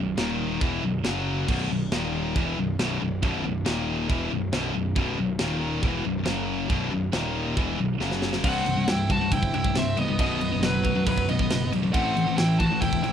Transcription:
Already playing: B0 B1 F#2
0.17 D#1 D#2 A#2 D#3, snare, china
0.61 E1 E2 B2 E3, kick, china
0.83 B0 B1 F#2
1.04 F#1 F#2 C#3 F#3, snare, china
1.48 B0 B1 F#2 B2, kick, crash, china
1.70 B0 B1 F#2
1.92 D#1 D#2 A#2 D#3, snare, china
2.35 E1 E2 B2 E3, kick, china
2.57 B0 B1 F#2
2.79 B0 B1 F#2 B2, snare, china
3.01 B0 B1 F#2
3.22 B0 B1 F#2 B2, kick, china
3.44 B0 B1 F#2
3.65 D#1 D#2 A#2 D#3, snare, china
4.08 E1 E2 B2 E3, kick, china
4.31 B0 B1 F#2
4.51 B0 B1 F#2 B2, snare, china
4.74 B0 B1 F#2
4.96 B0 B1 F#2 B2, kick, china
5.18 B0 B1 F#2
5.39 D#1 D#2 A#2 D#3, snare, china
5.82 E1 E2 B2 E3, kick, china
6.04 B0 B1 F#2
6.25 F#1 F#2 C#3 F#3, snare, china
6.69 B0 B1 F#2 B2, kick, china
6.91 B0 B1 F#2
7.13 D#1 D#2 A#2 D#3, snare, china
7.57 E1 E2 B2 E3, kick, china
7.78 B0 B1 F#2
8.00 F#1 F#2 C#3 F#3, snare
8.11 snare
8.22 snare
8.33 snare
8.44 C1 C2 G2 C3 E3 G3 C4 G4 C5 F#5, kick, crash
8.66 C1 C2 G2, crash
8.76 C2 G2
8.88 C1 C2 G2 E4 G5, snare, crash
9.10 C1 C2 G2 F#4 A5, kick, crash
9.21 C2 G2
9.32 G1 C2 G2 E4 G5, kick, crash
9.43 kick
9.54 C1 C2 G2 E4 G5, crash
9.64 C2 G2, kick
9.75 C1 C2 G2 C4 E5, snare, crash
9.97 C1 C2 G2 B3 D#5, crash
10.08 C2 G2
10.18 B0 B1 F#2 B2 D#3 F#3 B3 F#4 B4 D#5, kick, crash
10.40 B0 B1 F#2, crash
10.52 B1 F#2
10.62 F#1 B1 F#2 F#3 B4, snare, crash
10.83 B0 B1 F#2, kick, crash
10.95 B1 F#2
11.06 B0 B1 F#2 F#3 B4, kick, crash
11.18 kick
11.28 B0 B1 F#2 B3 D#5, crash
11.39 B1 F#2, kick
11.50 F#1 B1 F#2, snare, crash
11.72 A1 B1 F#2, crash
11.83 B1 F#2
11.92 A1 A2 E3 A3 C4 A4 C5 F#5, kick, crash
12.16 A1 A2 E3, crash
12.27 A2 E3
12.36 A1 A2 E3 E4 G5, snare, crash
12.59 A1 A2 E3 F#4 A5, kick, crash
12.71 A2 E3
12.80 E1 A2 E3 E4 G5, kick, crash
12.93 kick
13.03 A1 A2 E3 E4 G5, crash

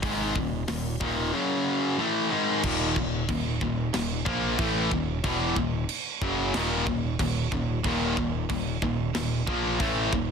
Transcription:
0.03 G#1 G#2 D#3 G#3, kick, open hi-hat
0.36 D#1 D#2 A#2, kick
0.68 D#1 D#2 A#2, snare, open hi-hat
1.01 D#1 D#2 A#2 D#3, kick
1.33 F#2 C#3 F#3
1.98 A2 E3 A3
2.30 G#2 D#3 G#3
2.64 D#1 D#2 A#2 D#3, kick, crash
2.96 D#1 D#2 A#2, kick
3.29 D#1 D#2 A#2, kick, crash
3.61 D#1 D#2 A#2, kick
3.94 D#1 D#2 A#2, snare, crash
4.25 A#1 A#2 F3 A#3, kick
4.58 A1 A2 E3 A3, kick, crash
4.91 D#1 D#2 A#2, kick
5.24 E1 E2 B2 E3, kick, crash
5.56 D#1 D#2 A#2, kick
5.89 crash
6.21 F#1 F#2 C#3 F#3, kick
6.54 D#1 D#2 A#2 D#3, snare, crash
6.87 D#1 D#2 A#2, kick
7.19 D#1 D#2 A#2, kick, crash
7.52 D#1 D#2 A#2, kick
7.84 D#1 D#2 A#2 D#3, kick, crash
8.17 D#1 D#2 A#2, kick
8.50 D#1 D#2 A#2, kick, crash
8.82 D#1 D#2 A#2, kick
9.15 D#1 D#2 A#2, snare, crash
9.47 A#1 A#2 F3 A#3, kick
9.80 A1 A2 E3 A3, kick, crash
10.12 D#1 D#2 A#2, kick

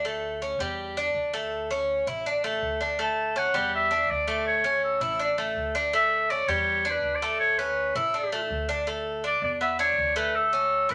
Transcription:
Already playing: D2
0.05 A3
0.42 C#4
0.59 E2 G3
0.97 D4
1.14 D2
1.34 A3
1.71 C#4
2.07 A1 E4
2.26 D4
2.44 A3
2.61 D2
2.81 D4
2.99 A3 A5
3.36 C#4 F#5
3.54 E2 G3
3.75 E5
3.91 D4
4.09 D2 D5
4.28 A3
4.47 C#5
4.64 C#4
4.84 A4
5.00 A1 E4
5.19 D4
5.38 A3
5.56 D2
5.75 D4
5.93 A3 E5
6.30 C#4 D5
6.48 E2 G3 C#5
6.85 D4
6.91 B4
7.03 D2
7.15 D5
7.22 A3
7.40 C#5
7.58 C#4 B4
7.95 A1 E4 A4
8.14 D4
8.32 A3
8.50 D2
8.69 D4
8.87 A3
9.24 D4 D5
9.42 E2 D5
9.61 B3 E5
9.79 D4 C#5
9.97 D2
10.16 A3 B4
10.35 A4
10.53 C#4
10.89 A1 E4 B4

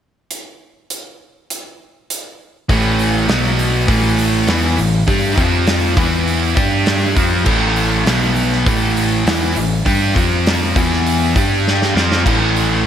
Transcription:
0.31 closed hi-hat
0.90 closed hi-hat
1.50 closed hi-hat
2.10 closed hi-hat
2.69 A1 A2 E3 A3, kick, open hi-hat
2.99 open hi-hat
3.29 B1 B2 F#3 B3, snare, open hi-hat
3.59 open hi-hat
3.88 A1 A2 E3 A3, kick, open hi-hat
4.18 open hi-hat
4.48 E2 E3 B3 E4, snare, open hi-hat
4.78 A1 A2 E3, open hi-hat
5.07 G2 G3 D4 G4, kick, open hi-hat
5.37 F2 F3 C4 F4, kick, open hi-hat
5.67 snare, open hi-hat
5.97 E2 E3 B3 E4, kick, open hi-hat
6.27 open hi-hat
6.55 G2 G3 D4 G4, kick, open hi-hat
6.86 snare, open hi-hat
7.16 F2 F3 C4 F4, kick, open hi-hat
7.45 A1 A2 E3 A3, kick, crash
7.76 open hi-hat
8.05 B1 B2 F#3 B3, snare, open hi-hat
8.36 open hi-hat
8.52 snare
8.66 A1 A2 E3 A3, kick, open hi-hat
8.97 open hi-hat
9.25 E2 E3 B3 E4, snare, open hi-hat
9.55 A1 A2 E3, open hi-hat
9.85 G2 G3 D4 G4, kick, open hi-hat
10.14 F2 F3 C4 F4, kick, open hi-hat
10.46 snare, open hi-hat
10.75 E2 E3 B3 E4, kick, open hi-hat
10.93 snare
11.06 open hi-hat
11.36 G2 G3 D4 G4, kick, open hi-hat
11.68 snare
11.82 snare
11.95 F2 F3 C4 F4, snare
12.12 snare
12.25 A1 A2 E3 A3, kick, crash
12.56 open hi-hat

